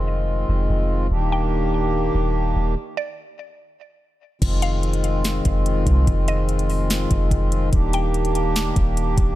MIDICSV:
0, 0, Header, 1, 5, 480
1, 0, Start_track
1, 0, Tempo, 413793
1, 1285, Time_signature, 4, 2, 24, 8
1, 10849, End_track
2, 0, Start_track
2, 0, Title_t, "Synth pluck"
2, 0, Program_c, 0, 84
2, 1535, Note_on_c, 0, 79, 75
2, 1759, Note_off_c, 0, 79, 0
2, 3449, Note_on_c, 0, 74, 81
2, 3675, Note_off_c, 0, 74, 0
2, 5364, Note_on_c, 0, 77, 85
2, 5592, Note_off_c, 0, 77, 0
2, 7288, Note_on_c, 0, 75, 74
2, 7515, Note_off_c, 0, 75, 0
2, 9209, Note_on_c, 0, 79, 78
2, 9435, Note_off_c, 0, 79, 0
2, 10849, End_track
3, 0, Start_track
3, 0, Title_t, "Harmonium"
3, 0, Program_c, 1, 20
3, 0, Note_on_c, 1, 51, 75
3, 0, Note_on_c, 1, 56, 64
3, 0, Note_on_c, 1, 60, 65
3, 0, Note_on_c, 1, 65, 82
3, 1237, Note_off_c, 1, 51, 0
3, 1244, Note_off_c, 1, 65, 0
3, 1245, Note_off_c, 1, 56, 0
3, 1246, Note_off_c, 1, 60, 0
3, 1284, Note_on_c, 1, 51, 75
3, 1284, Note_on_c, 1, 58, 70
3, 1284, Note_on_c, 1, 62, 66
3, 1285, Note_on_c, 1, 67, 84
3, 3185, Note_off_c, 1, 51, 0
3, 3186, Note_off_c, 1, 58, 0
3, 3186, Note_off_c, 1, 62, 0
3, 3186, Note_off_c, 1, 67, 0
3, 5122, Note_on_c, 1, 51, 75
3, 5122, Note_on_c, 1, 60, 70
3, 5123, Note_on_c, 1, 56, 70
3, 5124, Note_on_c, 1, 65, 85
3, 8925, Note_off_c, 1, 60, 0
3, 8926, Note_off_c, 1, 56, 0
3, 8926, Note_off_c, 1, 65, 0
3, 8966, Note_on_c, 1, 58, 70
3, 8966, Note_on_c, 1, 67, 84
3, 8967, Note_on_c, 1, 62, 73
3, 10849, Note_off_c, 1, 51, 0
3, 10849, Note_off_c, 1, 58, 0
3, 10849, Note_off_c, 1, 62, 0
3, 10849, Note_off_c, 1, 67, 0
3, 10849, End_track
4, 0, Start_track
4, 0, Title_t, "808-style bass"
4, 0, Program_c, 2, 38
4, 0, Note_on_c, 2, 29, 114
4, 519, Note_off_c, 2, 29, 0
4, 566, Note_on_c, 2, 29, 109
4, 796, Note_off_c, 2, 29, 0
4, 807, Note_on_c, 2, 29, 104
4, 1267, Note_off_c, 2, 29, 0
4, 1286, Note_on_c, 2, 27, 111
4, 2439, Note_off_c, 2, 27, 0
4, 2489, Note_on_c, 2, 27, 104
4, 2948, Note_off_c, 2, 27, 0
4, 2968, Note_on_c, 2, 27, 100
4, 3197, Note_off_c, 2, 27, 0
4, 5125, Note_on_c, 2, 29, 110
4, 6279, Note_off_c, 2, 29, 0
4, 6327, Note_on_c, 2, 29, 111
4, 6787, Note_off_c, 2, 29, 0
4, 6804, Note_on_c, 2, 36, 103
4, 7035, Note_off_c, 2, 36, 0
4, 7046, Note_on_c, 2, 29, 114
4, 8199, Note_off_c, 2, 29, 0
4, 8247, Note_on_c, 2, 29, 104
4, 8477, Note_off_c, 2, 29, 0
4, 8482, Note_on_c, 2, 29, 111
4, 8944, Note_off_c, 2, 29, 0
4, 8964, Note_on_c, 2, 27, 116
4, 10119, Note_off_c, 2, 27, 0
4, 10167, Note_on_c, 2, 27, 105
4, 10627, Note_off_c, 2, 27, 0
4, 10644, Note_on_c, 2, 27, 106
4, 10849, Note_off_c, 2, 27, 0
4, 10849, End_track
5, 0, Start_track
5, 0, Title_t, "Drums"
5, 5126, Note_on_c, 9, 36, 101
5, 5126, Note_on_c, 9, 42, 73
5, 5126, Note_on_c, 9, 49, 92
5, 5242, Note_off_c, 9, 36, 0
5, 5242, Note_off_c, 9, 42, 0
5, 5242, Note_off_c, 9, 49, 0
5, 5363, Note_on_c, 9, 42, 91
5, 5479, Note_off_c, 9, 42, 0
5, 5605, Note_on_c, 9, 42, 58
5, 5721, Note_off_c, 9, 42, 0
5, 5724, Note_on_c, 9, 42, 59
5, 5840, Note_off_c, 9, 42, 0
5, 5845, Note_on_c, 9, 42, 66
5, 5961, Note_off_c, 9, 42, 0
5, 6084, Note_on_c, 9, 42, 69
5, 6089, Note_on_c, 9, 38, 118
5, 6200, Note_off_c, 9, 42, 0
5, 6205, Note_off_c, 9, 38, 0
5, 6323, Note_on_c, 9, 42, 77
5, 6327, Note_on_c, 9, 36, 96
5, 6439, Note_off_c, 9, 42, 0
5, 6443, Note_off_c, 9, 36, 0
5, 6565, Note_on_c, 9, 42, 82
5, 6681, Note_off_c, 9, 42, 0
5, 6804, Note_on_c, 9, 36, 100
5, 6805, Note_on_c, 9, 42, 84
5, 6920, Note_off_c, 9, 36, 0
5, 6921, Note_off_c, 9, 42, 0
5, 7045, Note_on_c, 9, 42, 75
5, 7046, Note_on_c, 9, 36, 100
5, 7161, Note_off_c, 9, 42, 0
5, 7162, Note_off_c, 9, 36, 0
5, 7283, Note_on_c, 9, 42, 84
5, 7399, Note_off_c, 9, 42, 0
5, 7525, Note_on_c, 9, 42, 58
5, 7641, Note_off_c, 9, 42, 0
5, 7645, Note_on_c, 9, 42, 59
5, 7761, Note_off_c, 9, 42, 0
5, 7767, Note_on_c, 9, 46, 49
5, 7883, Note_off_c, 9, 46, 0
5, 8005, Note_on_c, 9, 42, 66
5, 8010, Note_on_c, 9, 38, 113
5, 8121, Note_off_c, 9, 42, 0
5, 8126, Note_off_c, 9, 38, 0
5, 8243, Note_on_c, 9, 42, 78
5, 8246, Note_on_c, 9, 36, 98
5, 8359, Note_off_c, 9, 42, 0
5, 8362, Note_off_c, 9, 36, 0
5, 8483, Note_on_c, 9, 36, 96
5, 8485, Note_on_c, 9, 42, 81
5, 8599, Note_off_c, 9, 36, 0
5, 8601, Note_off_c, 9, 42, 0
5, 8723, Note_on_c, 9, 42, 84
5, 8839, Note_off_c, 9, 42, 0
5, 8963, Note_on_c, 9, 42, 71
5, 8964, Note_on_c, 9, 36, 100
5, 9079, Note_off_c, 9, 42, 0
5, 9080, Note_off_c, 9, 36, 0
5, 9202, Note_on_c, 9, 42, 92
5, 9318, Note_off_c, 9, 42, 0
5, 9446, Note_on_c, 9, 42, 55
5, 9562, Note_off_c, 9, 42, 0
5, 9568, Note_on_c, 9, 42, 58
5, 9684, Note_off_c, 9, 42, 0
5, 9688, Note_on_c, 9, 42, 69
5, 9804, Note_off_c, 9, 42, 0
5, 9927, Note_on_c, 9, 42, 68
5, 9932, Note_on_c, 9, 38, 118
5, 10043, Note_off_c, 9, 42, 0
5, 10048, Note_off_c, 9, 38, 0
5, 10165, Note_on_c, 9, 42, 78
5, 10166, Note_on_c, 9, 36, 100
5, 10281, Note_off_c, 9, 42, 0
5, 10282, Note_off_c, 9, 36, 0
5, 10407, Note_on_c, 9, 42, 85
5, 10523, Note_off_c, 9, 42, 0
5, 10643, Note_on_c, 9, 36, 99
5, 10644, Note_on_c, 9, 42, 80
5, 10759, Note_off_c, 9, 36, 0
5, 10760, Note_off_c, 9, 42, 0
5, 10849, End_track
0, 0, End_of_file